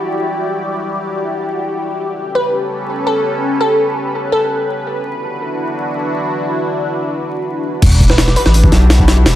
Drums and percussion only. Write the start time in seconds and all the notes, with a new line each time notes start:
7.82 kick, open hi-hat, crash
7.92 closed hi-hat
8.00 kick, open hi-hat
8.10 snare
8.18 snare, open hi-hat
8.28 snare
8.36 open hi-hat
8.46 snare
8.54 open hi-hat
8.64 kick
8.72 snare, open hi-hat
8.90 snare, open hi-hat
8.99 kick
9.08 snare, open hi-hat
9.26 snare, open hi-hat